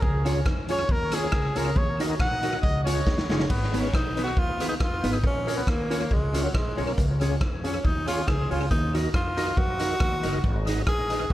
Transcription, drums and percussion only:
0.02 kick loud
0.26 closed hi-hat medium
0.46 kick loud
0.46 cross-stick loud
0.69 closed hi-hat medium
0.89 kick loud
1.12 cross-stick medium
1.12 closed hi-hat loud
1.32 kick loud
1.32 cross-stick loud
1.56 closed hi-hat medium
1.76 kick loud
2.00 closed hi-hat medium
2.20 kick loud
2.20 cross-stick loud
2.43 closed hi-hat medium
2.63 kick loud
2.87 closed hi-hat loud
3.07 kick loud
3.07 snare medium
3.18 snare medium
3.30 snare medium
3.40 snare medium
3.50 kick loud
3.50 crash medium
3.74 closed hi-hat medium
3.94 kick loud
3.94 cross-stick loud
4.17 closed hi-hat medium
4.37 kick loud
4.60 closed hi-hat loud
4.80 kick loud
4.80 cross-stick loud
5.04 closed hi-hat medium
5.24 kick loud
5.48 closed hi-hat medium
5.67 kick loud
5.67 cross-stick loud
5.91 closed hi-hat medium
6.11 kick loud
6.34 closed hi-hat loud
6.54 kick loud
6.54 cross-stick loud
6.78 open hi-hat medium
6.98 kick loud
6.98 hi-hat pedal medium
7.21 closed hi-hat medium
7.41 kick loud
7.41 cross-stick loud
7.64 closed hi-hat medium
7.85 kick loud
8.07 closed hi-hat loud
8.28 kick loud
8.28 cross-stick loud
8.51 open hi-hat medium
8.71 kick loud
8.71 hi-hat pedal medium
8.95 closed hi-hat medium
9.14 kick loud
9.14 cross-stick loud
9.38 closed hi-hat medium
9.57 kick loud
9.79 closed hi-hat loud
10.00 kick loud
10.00 cross-stick loud
10.23 closed hi-hat medium
10.44 kick loud
10.67 closed hi-hat medium
10.87 kick loud
10.87 cross-stick loud
11.10 closed hi-hat medium

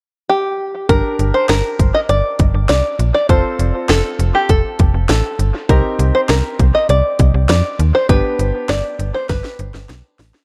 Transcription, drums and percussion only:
0.89 kick loud
0.89 closed hi-hat medium
1.19 closed hi-hat medium
1.49 snare loud
1.49 closed hi-hat medium
1.79 kick medium
1.79 closed hi-hat medium
2.09 closed hi-hat medium
2.39 kick medium
2.39 closed hi-hat medium
2.69 snare loud
2.69 closed hi-hat medium
2.99 closed hi-hat medium
3.29 kick loud
3.29 closed hi-hat medium
3.59 closed hi-hat medium
3.89 snare loud
3.89 closed hi-hat medium
4.20 closed hi-hat medium
4.49 kick medium
4.49 closed hi-hat medium
4.79 kick medium
4.79 closed hi-hat medium
5.09 snare loud
5.09 closed hi-hat medium
5.39 closed hi-hat medium
5.69 kick loud
5.69 closed hi-hat medium
5.99 closed hi-hat medium
6.29 snare loud
6.29 closed hi-hat medium
6.59 kick medium
6.59 closed hi-hat medium
6.89 closed hi-hat medium
7.19 kick medium
7.19 closed hi-hat medium
7.49 snare loud
7.49 closed hi-hat medium
7.80 closed hi-hat medium
8.09 kick loud
8.09 closed hi-hat medium
8.39 closed hi-hat medium
8.69 snare loud
8.69 closed hi-hat medium
9.00 closed hi-hat medium
9.29 kick medium
9.29 snare medium
9.29 closed hi-hat medium
9.44 snare medium
9.59 closed hi-hat medium
9.74 snare medium
9.89 snare medium
9.89 closed hi-hat medium
10.19 snare loud
10.19 open hi-hat medium
10.34 snare medium

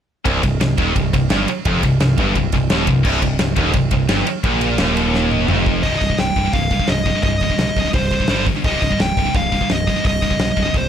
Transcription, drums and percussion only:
0.26 kick loud
0.26 ride loud
0.43 kick medium
0.43 ride medium
0.61 snare loud
0.61 ride loud
0.78 kick loud
0.78 ride medium
0.96 kick loud
0.96 ride loud
1.13 kick medium
1.13 ride medium
1.30 snare loud
1.30 ride loud
1.48 ride medium
1.65 kick loud
1.65 ride loud
1.83 kick medium
1.83 ride medium
2.00 snare loud
2.00 ride loud
2.18 kick loud
2.18 ride medium
2.35 kick medium
2.35 ride medium
2.52 kick medium
2.52 ride medium
2.70 snare loud
2.70 ride loud
2.87 kick medium
2.87 ride medium
3.05 kick loud
3.05 crash loud
3.22 kick medium
3.22 ride medium
3.39 snare loud
3.39 ride loud
3.56 kick loud
3.56 ride medium
3.73 kick medium
3.73 ride loud
3.91 kick medium
3.91 ride medium
4.09 snare loud
4.09 ride loud
4.27 ride medium
4.44 kick loud
4.44 ride loud
4.61 ride medium
4.78 snare loud
4.78 ride loud
4.97 ride medium
5.14 snare medium
5.31 mid tom medium
5.48 mid tom loud
5.66 kick medium
5.83 kick loud
5.83 open hi-hat medium
6.01 kick medium
6.01 open hi-hat medium
6.10 kick medium
6.18 snare loud
6.18 open hi-hat medium
6.36 kick medium
6.36 open hi-hat medium
6.53 kick loud
6.53 open hi-hat medium
6.70 kick medium
6.70 open hi-hat medium
6.79 kick medium
6.87 snare loud
6.87 open hi-hat medium
7.05 kick medium
7.05 open hi-hat medium
7.22 kick loud
7.22 open hi-hat medium
7.40 kick medium
7.40 open hi-hat medium
7.50 kick medium
7.59 snare loud
7.59 open hi-hat medium
7.76 kick medium
7.76 open hi-hat medium
7.93 kick loud
7.93 open hi-hat medium
8.11 kick medium
8.11 open hi-hat medium
8.20 kick medium
8.28 snare loud
8.28 open hi-hat medium
8.46 kick medium
8.46 open hi-hat medium
8.64 kick loud
8.64 open hi-hat medium
8.82 kick medium
8.82 open hi-hat medium
8.91 kick medium
9.00 snare loud
9.00 open hi-hat medium
9.17 kick medium
9.17 open hi-hat medium
9.35 kick loud
9.35 open hi-hat medium
9.52 kick medium
9.52 open hi-hat medium
9.61 kick medium
9.69 snare loud
9.69 open hi-hat medium
9.87 kick medium
9.87 open hi-hat medium
10.05 kick loud
10.05 open hi-hat medium
10.22 kick medium
10.22 open hi-hat medium
10.31 kick medium
10.39 snare loud
10.39 open hi-hat medium
10.57 kick medium
10.57 open hi-hat medium
10.74 kick loud
10.74 open hi-hat medium

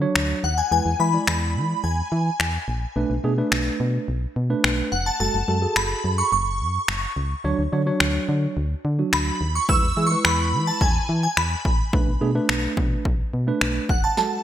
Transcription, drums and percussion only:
0.16 finger snap loud
1.27 finger snap loud
2.40 finger snap loud
3.52 finger snap loud
4.64 finger snap loud
5.76 finger snap loud
6.88 finger snap loud
8.00 finger snap loud
9.13 finger snap loud
9.69 kick loud
10.25 finger snap loud
10.81 kick medium
11.37 finger snap loud
11.65 kick medium
11.93 kick loud
12.49 finger snap loud
12.77 kick medium
13.05 kick medium
13.61 finger snap loud
13.89 kick medium
14.17 snare medium

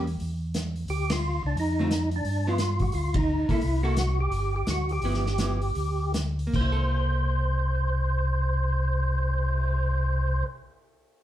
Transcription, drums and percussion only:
0.07 open hi-hat soft
0.20 open hi-hat soft
0.54 snare medium
0.54 closed hi-hat medium
0.76 open hi-hat soft
0.88 open hi-hat soft
1.10 snare medium
1.10 ride medium
1.57 open hi-hat soft
1.91 snare medium
1.91 closed hi-hat medium
2.11 open hi-hat soft
2.25 open hi-hat soft
2.58 snare medium
2.58 closed hi-hat medium
2.79 kick soft
2.79 open hi-hat soft
2.92 open hi-hat soft
3.14 kick medium
3.14 ride medium
3.49 kick medium
3.49 open hi-hat soft
3.61 open hi-hat soft
3.97 snare medium
3.97 closed hi-hat medium
4.32 open hi-hat soft
4.67 snare medium
4.67 closed hi-hat medium
4.89 open hi-hat soft
5.02 open hi-hat soft
5.14 snare soft
5.26 snare soft
5.38 snare medium
5.38 closed hi-hat medium
5.62 open hi-hat soft
5.75 open hi-hat soft
6.14 snare medium
6.14 closed hi-hat medium
6.39 open hi-hat soft
6.54 kick medium
6.54 crash medium
6.79 cymbal swell soft

